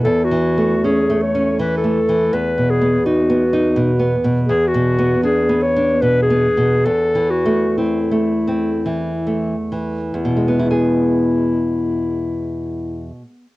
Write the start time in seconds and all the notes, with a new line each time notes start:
0.04 E2 A4
0.24 F#4
0.31 E3
0.57 A3
0.84 C#4 G#4
1.10 A3
1.22 C#5
1.35 C#4
1.59 E3 B4
1.78 A4
1.84 A3
2.09 E3
2.33 E2 B4
2.58 B2
2.71 G#4
2.82 B3
3.06 D#4 F#4
3.30 B3
3.53 D#4
3.76 B2
3.99 B3
4.24 B2
4.48 E2 G#4
4.67 F#4
4.74 B2
4.98 B3
5.23 D4 G#4
5.49 B3
5.63 C#5
5.76 D4
6.02 B2 B4
6.22 G#4
6.30 B3
6.57 B2
6.86 E2 A4
7.15 E3
7.30 F#4
7.45 A3
7.77 C4 E4
8.11 A3
8.48 C4
8.86 E3
9.27 A3
9.72 E3
10.13 E2 E4
10.25 B2
10.37 G#3
10.48 B3
10.59 E4
10.71 G#4